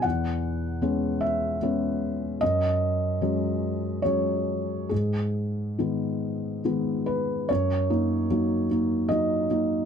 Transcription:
<<
  \new Staff \with { instrumentName = "Felt piano" } { \time 3/4 \key fis \mixolydian \tempo 4 = 74 fis''4. e''4. | dis''2 cis''4 | gis'2 r8 b'8 | cis''2 dis''4 | }
  \new Staff \with { instrumentName = "Felt piano" } { \time 3/4 \key fis \mixolydian e,4 <gis b cis'>4 <gis b cis'>4 | fis,4 <fis gis cis'>4 <fis gis cis'>4 | gis,4 <dis gis b>4 <dis gis b>4 | fis,8 <ais dis'>8 <fis ais dis'>8 <ais dis'>8 <fis ais dis'>8 <ais dis'>8 | }
>>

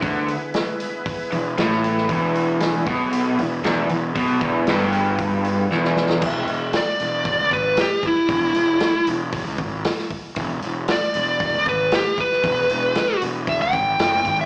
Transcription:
<<
  \new Staff \with { instrumentName = "Lead electric guitar" } { \time 4/4 \key e \mixolydian \tempo 4 = 116 r1 | r1 | r1 | r4 d''4. b'8 g'8 e'8~ |
e'4. r2 r8 | r4 d''4. b'8 g'8 b'8~ | b'4. r8 e''16 g''4. e''16 | }
  \new Staff \with { instrumentName = "Tonewheel organ" } { \time 4/4 \key e \mixolydian <b e' gis' b'>1 | <b e' gis'>1~ | <b e' gis'>1 | r1 |
r1 | r1 | r1 | }
  \new Staff \with { instrumentName = "Overdriven electric guitar" } { \clef bass \time 4/4 \key e \mixolydian d8 r2 e,8 a,4 | e,4. b,4 e,8 e,8 e,8 | b,8 e,8 g,2 e,4 | r1 |
r1 | r1 | r1 | }
  \new Staff \with { instrumentName = "Fingered electric bass" } { \clef bass \time 4/4 \key e \mixolydian d,8 r2 e,,8 a,,4 | e,,4. b,,4 e,,8 e,,8 e,,8 | b,,8 e,,8 g,,2 e,,4 | e,,8 e,,8 r8 e,,8. cis,16 gis,,8 r4 |
e,,8 e,,8 r8 e,,8. cis,16 gis,,8 r4 | e,,8 e,,8 r8 e,,8. cis,16 gis,,8 r4 | e,,8 e,,8 r8 e,,8. cis,16 gis,,8 fis,,8 gis,,8 | }
  \new DrumStaff \with { instrumentName = "Drums" } \drummode { \time 4/4 <hho bd>8 hho8 <hho sn>8 hho8 <hho bd>8 hho8 <hho sn>16 sn16 hho16 sn16 | <hho bd>8 hho8 <hho sn>8 <hho bd>8 hho8 hho8 <hho sn>8 hho8 | <hho bd>8 <hho bd>8 <hho sn>8 hho8 <hho bd>8 hho8 sn16 sn16 sn16 sn16 | <cymc bd>8 hho8 <hho sn>8 hho8 <hho bd>8 <hho bd>8 <hho sn>8 <hho bd>8 |
<hho bd>8 hho8 <hho sn>8 hho8 <hho bd>8 <hho bd>8 <hho sn>16 sn16 <hho bd>8 | <hho bd>8 hho8 <hho sn>8 hho8 <hho bd>8 <hho bd>8 <hho sn>8 <hho bd>16 sn16 | <hho bd>8 hho8 <hho sn>8 hho8 <hho bd>8 <hho bd>8 <hho sn>8 <hho bd>8 | }
>>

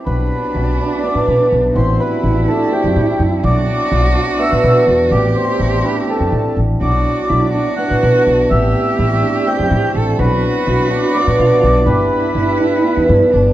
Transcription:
<<
  \new Staff \with { instrumentName = "Accordion" } { \time 7/8 \key b \phrygian \tempo 4 = 124 b'2 d''4 r8 | c''8 b'4 a'8 g'4 r8 | d''2 e''4 r8 | d''8 c''4 b'8 a'4 r8 |
d''2 fis''4 r8 | e''2 g''4 r8 | b'2 d''4. | b'2~ b'8 r4 | }
  \new Staff \with { instrumentName = "Cello" } { \time 7/8 \key b \phrygian d'2.~ d'8 | e'2.~ e'8 | fis'2.~ fis'8 | g'2. r8 |
fis'4 e'8 fis'2 | g'2. a'8 | fis'2.~ fis'8 | e'2. d'8 | }
  \new Staff \with { instrumentName = "Hammered dulcimer" } { \time 7/8 \key b \phrygian fis'4 e'8 d'8 b8 e'4 | fis'4 e'8 d'8 c'8 e'4 | fis'4 e'8 d'8 b8 e'4 | fis''4 e'8 d'8 c'8 e'4 |
fis'4 e'8 d'8 b8 e'4 | fis''4 e'8 d'8 c'8 e'4 | fis'4 e'8 d'8 b8 e'4 | g'4 e'8 d'8 b8 e'4 | }
  \new Staff \with { instrumentName = "Woodwind section" } { \time 7/8 \key b \phrygian <fis b d'>2.~ <fis b d'>8 | <g a c'>2.~ <g a c'>8 | <fis b d'>2.~ <fis b d'>8 | <g a c'>2.~ <g a c'>8 |
<fis b d'>2.~ <fis b d'>8 | <g a c'>2.~ <g a c'>8 | <fis b d'>2.~ <fis b d'>8 | <g b'>2.~ <g b'>8 | }
  \new Staff \with { instrumentName = "Upright bass" } { \clef bass \time 7/8 \key b \phrygian b,,8 r8 b,,8 r8. a,16 b,16 r16 b,,8 | a,,8 r8 a,,8 r8. fis,16 a,16 r16 fis,8 | b,,8 r8 b,,8 r8. a,16 b,16 r16 e,8 | a,,8 r8 a,,8 r8. fis,16 a,16 r16 a,,8 |
b,,8 r8 b,,8 r8. a,16 b,16 r16 b,,8 | a,,8 r8 a,,8 r8. fis,16 a,16 r16 a,,8 | b,,8 r8 b,,8 r8. a,16 b,16 r16 b,,8 | g,,8 r8 g,,8 r8. e,16 g,16 r16 g,,8 | }
>>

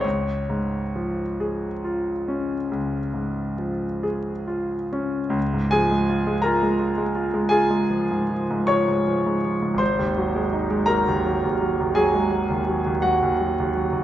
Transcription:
<<
  \new Staff \with { instrumentName = "Grand piano" } { \time 12/8 \key des \major \tempo 4. = 54 des''1~ des''8 r4. | r8 <aes' aes''>4 <bes' bes''>4. <aes' aes''>4. <des'' des'''>4. | <c'' c'''>4. <bes' bes''>4. <aes' aes''>4. <ges' ges''>4. | }
  \new Staff \with { instrumentName = "Grand piano" } { \clef bass \time 12/8 \key des \major des,8 aes,8 f8 aes'8 f'8 des'8 des,8 aes,8 f8 aes'8 f'8 des'8 | des,16 aes,16 f16 aes16 f'16 aes16 f'16 aes16 f'16 aes16 f'16 aes16 f'16 aes16 f16 aes,16 f16 aes,16 f16 aes,16 f16 aes,16 f16 aes,16 | aes,,16 ees,16 ges16 aes16 ees'16 aes16 ges16 ees,16 ges16 ees,16 ges16 ees,16 ges16 aes16 ges16 ees,16 ges16 ees,16 ges16 ees,16 ges16 ees,16 ges16 ees,16 | }
>>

